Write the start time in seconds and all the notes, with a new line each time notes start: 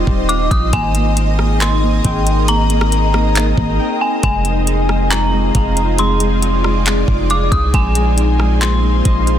Already playing: C4 D#4 F4 C5 D#5 F5 C6
0.07 D#1 G3, kick
0.29 F5 D6, closed hi-hat
0.51 A#1 D#6, kick, closed hi-hat
0.73 G#1 A#3 C4 G#4 A#4 G#5, kick, closed hi-hat
0.95 A#3, closed hi-hat
1.17 C4, closed hi-hat
1.39 A#3, cross-stick
1.60 A#3 C6, clap, closed hi-hat
1.83 A#3
2.05 G#1 G5, kick, closed hi-hat
2.27 closed hi-hat
2.48 A#3 A#5, closed hi-hat
2.70 A#3, closed hi-hat
2.81 cross-stick
2.92 C4, closed hi-hat
3.14 A#3, cross-stick
3.35 A#3, clap, closed hi-hat
3.58 G#1 A#3, kick
3.79 G5
4.01 G#5
4.23 F1 G#3 D#4 F4 G#4 G#5, kick, closed hi-hat
4.45 G#3, closed hi-hat
4.67 D#4, closed hi-hat
4.89 G#3, cross-stick
5.11 G#3 A#5, clap, closed hi-hat
5.33 G#3
5.55 F1 F5, kick, closed hi-hat
5.77 closed hi-hat
5.98 G#3 D5 C6, closed hi-hat
6.20 G#3, closed hi-hat
6.42 D#4, closed hi-hat
6.64 G#3, cross-stick
6.86 G#3, clap, closed hi-hat
7.08 F1 G#3, kick
7.30 F5 D6, closed hi-hat
7.52 C2 D#6, kick, closed hi-hat
7.74 A#1 G#3 A#3 F4 C5 G#5, kick, closed hi-hat
7.95 G#3, closed hi-hat
8.18 C4, closed hi-hat
8.39 G#3, cross-stick
8.61 G#3 C6, clap, closed hi-hat
8.83 G#3
9.05 A#1 D#5, kick, closed hi-hat
9.27 closed hi-hat